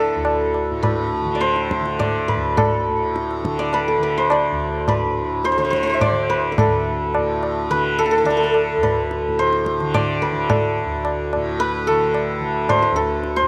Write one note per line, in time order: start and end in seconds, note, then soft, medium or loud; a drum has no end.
0.00 0.15 D2 medium
0.00 0.71 A2 medium
0.00 1.25 D3 medium
0.00 2.57 A4 loud
0.00 0.82 B4 medium
0.16 2.34 D2 medium
0.25 tabla na medium
0.54 tabla na medium
0.71 2.89 A2 medium
0.83 1.47 B4 medium
0.83 tabla na medium
0.83 tabla ge medium
1.25 1.80 D3 medium
1.35 1.99 D5 medium
1.41 2.34 C5 medium
1.41 tabla te medium
1.56 tabla te medium
1.71 tabla ke medium
1.80 3.43 D3 medium
1.86 tabla te soft
1.99 3.59 D5 medium
1.99 tabla na medium
1.99 tabla ge medium
2.28 3.73 B4 medium
2.28 tabla ge medium
2.35 4.51 D2 medium
2.57 3.87 A4 medium
2.57 tabla na loud
2.57 tabla ge medium
2.89 5.04 A2 medium
3.16 tabla te medium
3.31 tabla te medium
3.43 3.97 D3 medium
3.43 tabla ke medium
3.59 4.31 D5 medium
3.59 tabla te medium
3.73 4.02 B4 medium
3.73 tabla na medium
3.88 6.58 A4 medium
3.97 5.57 D3 medium
4.03 4.24 B4 medium
4.18 4.94 C5 medium
4.30 6.01 D5 medium
4.30 tabla na medium
4.51 6.65 D2 medium
4.88 5.51 B4 medium
4.88 tabla na medium
4.88 tabla ge medium
5.04 7.17 A2 medium
5.45 5.52 C5 medium
5.45 tabla te medium
5.52 5.57 C5 medium
5.57 6.11 D3 medium
5.57 5.64 C5 medium
5.57 tabla te soft
5.65 5.70 C5 medium
5.70 5.76 C5 medium
5.70 tabla ke medium
5.76 5.83 C5 medium
5.83 5.89 C5 medium
5.87 6.36 C5 medium
5.87 tabla te medium
5.94 8.23 E5 medium
6.01 8.48 D5 loud
6.01 tabla na medium
6.01 tabla ge medium
6.11 7.70 D3 medium
6.30 6.52 B4 medium
6.30 tabla te medium
6.52 7.70 B4 medium
6.58 7.98 A4 medium
6.58 tabla na loud
6.58 tabla ge loud
6.66 8.76 D2 medium
7.15 9.28 A2 medium
7.15 tabla na medium
7.43 tabla na medium
7.70 8.23 D3 medium
7.70 8.83 B4 medium
7.70 tabla te medium
7.99 8.05 A4 medium
7.99 tabla te medium
8.06 8.11 A4 medium
8.11 8.17 A4 medium
8.18 8.25 A4 medium
8.23 9.81 D3 medium
8.23 8.30 A4 medium
8.23 tabla na medium
8.30 8.37 A4 medium
8.37 8.43 A4 medium
8.43 10.49 A4 medium
8.54 tabla na medium
8.76 10.84 D2 medium
8.83 9.45 B4 medium
8.83 tabla na medium
8.83 tabla ge medium
9.11 tabla te medium
9.28 11.36 A2 medium
9.39 10.28 C5 medium
9.39 tabla te medium
9.53 tabla te medium
9.66 tabla ke medium
9.80 10.32 D3 medium
9.80 tabla te soft
9.94 12.41 D5 loud
9.94 tabla na medium
9.94 tabla ge medium
10.22 11.59 B4 medium
10.22 tabla te medium
10.32 11.88 D3 medium
10.49 11.87 A4 medium
10.49 tabla na loud
10.49 tabla ge medium
10.84 12.91 D2 medium
11.05 tabla na medium
11.33 13.42 A2 medium
11.33 tabla na medium
11.60 12.75 B4 loud
11.60 tabla te medium
11.87 12.40 D3 medium
11.87 12.95 A4 medium
11.87 tabla te medium
12.14 tabla na medium
12.40 13.48 D3 medium
12.69 12.88 C5 medium
12.69 tabla na medium
12.69 tabla ge medium
12.82 13.42 B4 medium
12.91 13.48 D2 medium
12.96 13.48 A4 medium
12.96 tabla te medium
13.24 tabla te medium
13.36 13.48 C5 medium
13.36 tabla te soft
13.43 13.48 A2 medium